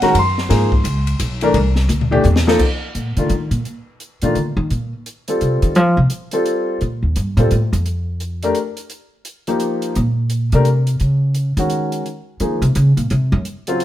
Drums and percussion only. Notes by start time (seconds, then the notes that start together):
0.02 snare, ride
0.15 ride
0.38 snare
0.50 snare, ride
0.72 kick
0.85 hi-hat pedal, ride
1.07 ride
1.20 hi-hat pedal, ride
1.41 ride
1.54 ride
1.76 snare
1.89 hi-hat pedal, high tom
2.01 floor tom
2.13 floor tom
2.24 floor tom, hi-hat pedal
2.36 snare
2.48 snare
2.59 kick, crash
2.95 closed hi-hat
3.17 closed hi-hat
3.30 closed hi-hat
3.51 closed hi-hat
3.65 closed hi-hat
4.00 closed hi-hat
4.22 closed hi-hat
4.35 closed hi-hat
4.70 closed hi-hat
5.06 closed hi-hat
5.28 closed hi-hat
5.41 closed hi-hat
5.62 closed hi-hat
5.75 closed hi-hat
6.10 closed hi-hat
6.31 closed hi-hat
6.46 closed hi-hat
6.81 closed hi-hat
7.16 closed hi-hat
7.37 closed hi-hat
7.51 closed hi-hat
7.73 closed hi-hat
7.86 closed hi-hat
8.20 closed hi-hat
8.43 closed hi-hat
8.55 closed hi-hat
8.77 closed hi-hat
8.90 closed hi-hat
9.25 closed hi-hat
9.47 closed hi-hat
9.60 closed hi-hat
9.82 closed hi-hat
9.95 closed hi-hat
10.30 closed hi-hat
10.52 closed hi-hat
10.65 closed hi-hat
10.87 closed hi-hat
11.00 closed hi-hat
11.35 closed hi-hat
11.57 closed hi-hat
11.70 closed hi-hat
11.92 closed hi-hat
12.06 closed hi-hat
12.40 closed hi-hat
12.62 closed hi-hat
12.75 closed hi-hat
12.97 closed hi-hat
13.10 closed hi-hat
13.45 closed hi-hat
13.67 closed hi-hat
13.80 closed hi-hat